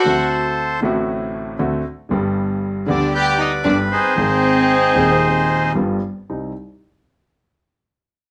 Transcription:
<<
  \new Staff \with { instrumentName = "Bandoneon" } { \time 4/4 \key c \minor \tempo 4 = 116 << { fis''8 r2. r8 | r4. d''8 g''8 ees''8 d''8 c''8~ | c''2. r4 | r1 | } \\ { <a' c''>4. r2 r8 | r2 <b' d''>4. <ees' aes'>8~ | <ees' aes'>2. r4 | r1 | } >> }
  \new Staff \with { instrumentName = "Violin section" } { \time 4/4 \key c \minor fis'8 r2. r8 | r4. d'8 g'8 ees'8 d'8 c'8~ | c'2. r4 | r1 | }
  \new Staff \with { instrumentName = "Grand piano" } { \clef bass \time 4/4 \key c \minor <d, d a c' fis'>4. <a,, a, d a c' fis'>4. <d, d a c' fis'>8 r8 | <g,, g, d g b g'>4. <d, d g b g'>4. <g,, g, d g b g'>8 r8 | <aes,, aes, ees aes c' aes'>4. <ees,, ees, ees aes c' aes'>4. <g,, g, d g b f'>8 r8 | <c, g c' ees'>8 r2. r8 | }
>>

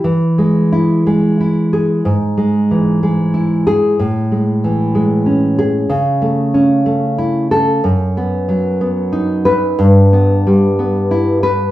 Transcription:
\new Staff \with { instrumentName = "Nylon-string guitar" } { \time 3/4 \key e \major \tempo 4 = 92 << { r2 r8 gis'8 | r2 r8 gis'8 | r2 r8 gis'8 | r2 r8 a'8 |
\key e \minor r2 r8 b'8 | r2 r8 b'8 | } \\ { e8 gis8 e'8 gis8 e'4 | gis,8 gis8 e8 gis8 e'4 | a,8 gis8 e8 gis8 cis'4 | cis8 a8 cis'8 a8 e'4 |
fis,8 b8 fis8 b8 dis'4 | g,8 b8 g8 b8 e'4 | } >> }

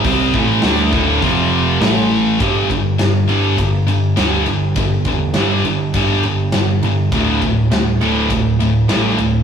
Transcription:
<<
  \new Staff \with { instrumentName = "Distorted electric guitar" } { \clef bass \time 4/4 \key g \major \tempo 4 = 102 <c g c'>8 <a, e a>8 <d a d'>8 <d, a, d>8 <f, c f>4 <a, e a>4 | <g, d g>8 <g, d>8 <g, d>8 <g, d g>8 <g, d>8 <g, d>8 <g, d g>8 <g, d>8 | <g, d>8 <g, d>8 <g, d g>8 <g, d>8 <g, d g>8 <g, d>8 <g, d>8 <g, d>8 | <d, a, d>8 <d, a,>8 <d, a,>8 <d, a, d>8 <d, a,>8 <d, a,>8 <d, a, d>8 <d, a,>8 | }
  \new Staff \with { instrumentName = "Overdriven electric guitar" } { \clef bass \time 4/4 \key g \major <c g c'>8 <a, e a>8 <d a d'>8 <d, a, d>8 <f, c f>4 <a, e a>4 | <g, d g>8 <g, d>8 <g, d>8 <g, d g>8 <g, d>8 <g, d>8 <g, d g>8 <g, d>8 | <g, d>8 <g, d>8 <g, d g>8 <g, d>8 <g, d g>8 <g, d>8 <g, d>8 <g, d>8 | <d, a, d>8 <d, a,>8 <d, a,>8 <d, a, d>8 <d, a,>8 <d, a,>8 <d, a, d>8 <d, a,>8 | }
  \new Staff \with { instrumentName = "Picked electric bass" } { \clef bass \time 4/4 \key g \major c,8 a,,8 d,8 d,,8 f,,4 a,,4 | g,,8 g,,8 g,,8 g,,8 g,,4 d,8 g,,8 | g,,8 e,8 g,,8 g,,8 g,,8 g,,8 g,,8 g,,8 | d,,8 d,,8 d,,8 d,,8 d,,4 a,,8 d,,8 | }
  \new DrumStaff \with { instrumentName = "Drums" } \drummode { \time 4/4 <hho bd>8 bd8 <hho sn>8 bd8 <hho bd>4 <hho sn>4 | <bd cymr>8 <bd cymr>8 <cymr sn>8 cymr8 <bd cymr>8 cymr8 <cymr sn>8 cymr8 | <bd cymr>8 <bd cymr>8 <cymr sn>8 cymr8 <bd cymr>8 cymr8 <cymr sn>8 cymr8 | <bd cymr>8 <bd cymr>8 <cymr sn>8 cymr8 <bd cymr>8 cymr8 <cymr sn>8 cymr8 | }
>>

